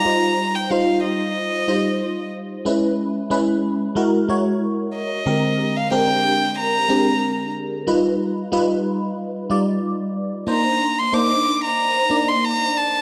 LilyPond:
<<
  \new Staff \with { instrumentName = "Violin" } { \time 4/4 \key ees \major \tempo 4 = 92 bes''8. g''16 f''8 ees''2 r8 | r2. r8 ees''8~ | ees''8. f''16 g''4 bes''4. r8 | r1 |
bes''8. c'''16 d'''8. bes''4 c'''16 bes''8 a''8 | }
  \new Staff \with { instrumentName = "FM electric piano" } { \time 4/4 \key ees \major <g ees' f' c''>4 <g ees' f' c''>4. <g ees' f' c''>4. | <aes des' fes' ces''>4 <aes des' fes' ces''>4 <aes fes' ges' bes'>8 <aes fes' ges' des''>4. | <d aes c' g' bes'>4 <aes c' d' g' bes'>4. <aes c' d' g' aes' bes'>4. | <g ees' f' b'>4 <g ees' f' b'>4. <g ees' f' d''>4. |
<bes d' ees' c''>4 <bes d' ees' c''>4. <bes d' ees' d''>4. | }
>>